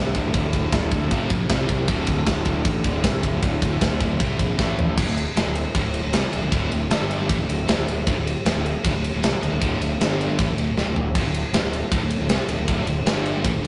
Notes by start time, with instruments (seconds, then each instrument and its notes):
Already playing: fingered electric bass C2, distorted electric guitar D2 A2
0.00 distorted electric guitar D3
0.15 fingered electric bass D1, distorted electric guitar D2 A2, kick, ride
0.25 distorted electric guitar D2 A2
0.34 fingered electric bass D1, distorted electric guitar D2 A2 D3, kick, ride
0.53 distorted electric guitar D2 A2, kick, ride
0.65 distorted electric guitar D2 A2
0.72 fingered electric bass D1, distorted electric guitar D2 A2, kick, snare, ride
0.91 distorted electric guitar D2 A2, kick, ride
1.03 distorted electric guitar D2 A2
1.11 fingered electric bass F1, distorted electric guitar F2 C3 F3, kick, ride
1.30 fingered electric bass A#1, distorted electric guitar F2 C3, kick, ride
1.40 distorted electric guitar F2 C3
1.49 fingered electric bass C2, distorted electric guitar C3 G3 C4, kick, snare, ride
1.69 fingered electric bass C2, distorted electric guitar C3 G3, kick, ride
1.80 distorted electric guitar C3 G3
1.88 fingered electric bass D1, distorted electric guitar D2 A2 D3, kick, ride
2.07 distorted electric guitar D2 A2, kick, ride
2.18 distorted electric guitar D2 A2
2.26 fingered electric bass D1, distorted electric guitar D2 A2, kick, snare, ride
2.45 distorted electric guitar D2 A2, kick, ride
2.56 distorted electric guitar D2 A2
2.65 fingered electric bass A1, distorted electric guitar D2 A2, kick, ride
2.84 fingered electric bass D1, distorted electric guitar D2 A2 D3, kick, ride
2.94 distorted electric guitar D2 A2
3.03 fingered electric bass C2, distorted electric guitar D2 A2 D3, kick, snare, ride
3.23 fingered electric bass D1, distorted electric guitar D2 A2, kick, ride
3.32 distorted electric guitar D2 A2
3.43 fingered electric bass D1, distorted electric guitar D2 A2 D3, kick, ride
3.62 distorted electric guitar D2 A2, kick, ride
3.71 distorted electric guitar D2 A2
3.81 fingered electric bass D1, distorted electric guitar D2 A2, kick, snare, ride
4.00 distorted electric guitar D2 A2, kick, ride
4.11 distorted electric guitar D2 A2
4.20 fingered electric bass C2, distorted electric guitar C3 G3 C4, kick, ride
4.39 fingered electric bass A#1, distorted electric guitar C3 G3, kick, ride
4.51 distorted electric guitar C3 G3
4.59 fingered electric bass A1, distorted electric guitar A2 E3 A3, kick, snare
4.78 fingered electric bass A1, distorted electric guitar A2 E3, floor tom
4.88 distorted electric guitar A2 E3
4.98 fingered electric bass D1, distorted electric guitar D2 A2, kick, crash
5.07 fingered electric bass D1, distorted electric guitar D2 A2
5.17 ride
5.36 fingered electric bass E1, distorted electric guitar E2 B2, snare, ride
5.46 fingered electric bass D1, distorted electric guitar D2 A2
5.55 ride
5.75 fingered electric bass D1, distorted electric guitar D2 A2, kick, ride
5.85 fingered electric bass D1, distorted electric guitar D2 A2
5.94 ride
6.03 fingered electric bass D1, distorted electric guitar D2 A2
6.12 fingered electric bass C2, distorted electric guitar C3 G3, snare, ride
6.24 muted distorted electric guitar stroke, muted fingered electric bass stroke
6.32 fingered electric bass D1, distorted electric guitar D2 A2, ride
6.42 fingered electric bass D1, distorted electric guitar D2 A2
6.51 fingered electric bass D1, distorted electric guitar D2 A2 D3, kick, ride
6.71 fingered electric bass D1, distorted electric guitar D2 A2, ride
6.90 fingered electric bass G1, distorted electric guitar G2 D3 G3, snare, ride
7.11 ride
7.29 fingered electric bass A1, distorted electric guitar A2 E3, kick, ride
7.39 fingered electric bass D1, distorted electric guitar D2 A2
7.49 fingered electric bass D1, distorted electric guitar D2 A2, ride
7.67 fingered electric bass D1, distorted electric guitar D2 A2, snare, ride
7.77 fingered electric bass D1, distorted electric guitar D2 A2
7.87 fingered electric bass D1, distorted electric guitar D2 A2, ride
8.07 fingered electric bass D1, distorted electric guitar D2 A2, kick, ride
8.16 fingered electric bass D1, distorted electric guitar D2 A2
8.27 ride
8.45 fingered electric bass E1, distorted electric guitar E2 B2, snare, ride
8.55 fingered electric bass D1, distorted electric guitar D2 A2
8.66 ride
8.84 fingered electric bass D1, distorted electric guitar D2 A2, kick, ride
8.94 fingered electric bass D1, distorted electric guitar D2 A2
9.04 ride
9.14 fingered electric bass D1, distorted electric guitar D2 A2
9.22 fingered electric bass C2, distorted electric guitar C3 G3, snare, ride
9.32 muted distorted electric guitar stroke, muted fingered electric bass stroke
9.42 fingered electric bass D1, distorted electric guitar D2 A2, ride
9.51 fingered electric bass D1, distorted electric guitar D2 A2
9.60 fingered electric bass D1, distorted electric guitar D2 A2 D3, kick, ride
9.80 fingered electric bass D1, distorted electric guitar D2 A2, ride
10.00 fingered electric bass G1, distorted electric guitar G2 D3 G3, snare, ride
10.21 ride
10.38 fingered electric bass A1, distorted electric guitar A2 E3, kick, ride
10.47 fingered electric bass D1, distorted electric guitar D2 A2
10.57 fingered electric bass D1, distorted electric guitar D2 A2, ride
10.76 fingered electric bass D1, distorted electric guitar D2 A2, snare
10.86 fingered electric bass D1, distorted electric guitar D2 A2
10.96 fingered electric bass D1, distorted electric guitar D2 A2, floor tom
11.15 fingered electric bass D1, distorted electric guitar D2 A2, kick, crash, ride
11.25 fingered electric bass D1, distorted electric guitar D2 A2
11.34 ride
11.53 fingered electric bass E1, distorted electric guitar E2 B2, snare, ride
11.62 fingered electric bass D1, distorted electric guitar D2 A2
11.73 ride
11.92 fingered electric bass D1, distorted electric guitar D2 A2, kick, ride
12.01 fingered electric bass D1, distorted electric guitar D2 A2
12.10 ride
12.19 fingered electric bass D1, distorted electric guitar D2 A2
12.28 fingered electric bass C2, distorted electric guitar C3 G3, snare, ride
12.38 muted fingered electric bass stroke, muted distorted electric guitar stroke
12.49 fingered electric bass D1, distorted electric guitar D2 A2, ride
12.58 fingered electric bass D1, distorted electric guitar D2 A2
12.68 fingered electric bass D1, distorted electric guitar D2 A2 D3, kick, ride
12.87 fingered electric bass D1, distorted electric guitar D2 A2, ride
13.05 fingered electric bass G1, distorted electric guitar G2 D3 G3, snare, ride
13.26 ride
13.45 fingered electric bass A1, distorted electric guitar A2 E3, kick, ride
13.53 fingered electric bass D1, distorted electric guitar D2 A2
13.62 fingered electric bass D1, distorted electric guitar D2 A2